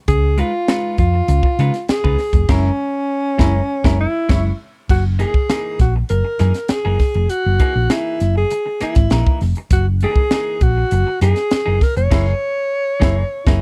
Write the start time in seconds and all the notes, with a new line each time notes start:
0.08 C#2 G#4, kick, closed hi-hat
0.38 G#3 D#4 F4 B4, closed hi-hat
0.68 G#3 D#4 F4 B4, snare, closed hi-hat
0.98 F2 F4, muted clean electric guitar stroke, kick, closed hi-hat
1.14 muted clean electric guitar stroke
1.28 C#2, muted clean electric guitar stroke, closed hi-hat
1.43 muted clean electric guitar stroke, kick
1.59 C#3 G#3 D#4 F4 B4, snare, closed hi-hat
1.74 snare, closed hi-hat
1.89 G#4, muted fingered electric bass stroke, muted clean electric guitar stroke, snare, closed hi-hat
2.04 C#2 G#3 D#4 F4 B4, kick
2.18 muted clean electric guitar stroke, snare, open hi-hat
2.33 F1, muted clean electric guitar stroke, kick, closed hi-hat
2.49 F#1 G#3 C#4 E4 A#4, kick, snare, crash
3.38 F#1 G#3 C#4 E4 A#4, kick, snare
3.84 F#1 G#3 C#4 E4 A#4, kick, snare
4.01 E4
4.29 F#1 G#3 C#4 E4 C#5, kick, snare, crash
4.89 F#1 F#4, kick, crash
5.19 E3 A#3 D#4 G#4, closed hi-hat
5.34 kick
5.49 E3 A#3 D#4 G#4, snare, closed hi-hat
5.79 A#1 F#4, muted clean electric guitar stroke, kick, snare, closed hi-hat
5.96 muted clean electric guitar stroke
6.09 F#1 A#4, muted clean electric guitar stroke, closed hi-hat
6.24 muted clean electric guitar stroke
6.39 F#2 E3 A#3 D#4 G#4, snare, closed hi-hat
6.54 muted clean electric guitar stroke, snare, closed hi-hat
6.68 G#4, muted fingered electric bass stroke, muted clean electric guitar stroke, snare, closed hi-hat
6.85 F#1 E3 A#3 D#4 G#4
6.99 muted clean electric guitar stroke, kick, snare, open hi-hat
7.14 F1, muted clean electric guitar stroke, closed hi-hat
7.30 F#4, closed hi-hat
7.46 F#1
7.59 E3 A#3 D#4 G#4, kick, closed hi-hat
7.75 A#1
7.90 E3 A#3 D#4 E4 G#4, snare, closed hi-hat
8.20 F#1, muted clean electric guitar stroke, snare, closed hi-hat
8.36 G#4, muted clean electric guitar stroke
8.50 muted clean electric guitar stroke, closed hi-hat
8.66 muted clean electric guitar stroke
8.81 E3 A#3 D#4 E4 G#4, muted fingered electric bass stroke, snare, closed hi-hat
8.95 G#1, muted clean electric guitar stroke, kick, snare, closed hi-hat
9.10 A#1 E3 A#3 D#4 A#4, snare, closed hi-hat
9.27 kick
9.41 F1, muted clean electric guitar stroke, snare, open hi-hat
9.55 muted clean electric guitar stroke, closed hi-hat
9.71 F#1 F#4, kick, closed hi-hat
10.01 E3 A#3 D#4 G#4, closed hi-hat
10.16 kick
10.31 E3 A#3 D#4 G#4, snare, closed hi-hat
10.61 A#1 F#4, muted clean electric guitar stroke, kick, closed hi-hat
10.77 muted clean electric guitar stroke
10.91 F#1, muted clean electric guitar stroke, closed hi-hat
11.07 muted clean electric guitar stroke
11.21 F#2 E3 A#3 D#4 G#4, snare, closed hi-hat
11.36 muted clean electric guitar stroke, snare, closed hi-hat
11.51 muted clean electric guitar stroke, muted fingered electric bass stroke, snare, closed hi-hat
11.66 F#1 E3 A#3 D#4 G#4
11.81 A#4, muted clean electric guitar stroke, kick, snare, open hi-hat
11.96 F1 C#5, muted clean electric guitar stroke, closed hi-hat
12.11 F#1 E3 A#3 D#4 E4 G#4, kick, snare, crash
13.00 F#1 E3 A#3 D#4 E4 G#4, kick, snare
13.45 F#1 E3 A#3 D#4 E4 G#4, kick, snare